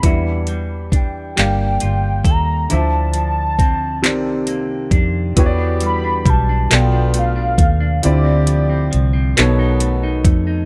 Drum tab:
HH |xxxxxx|xxxxxx|xxxxxx|xxxxxx|
CP |---x--|---x--|---x--|---x--|
BD |o-o--o|--o--o|o-o--o|-----o|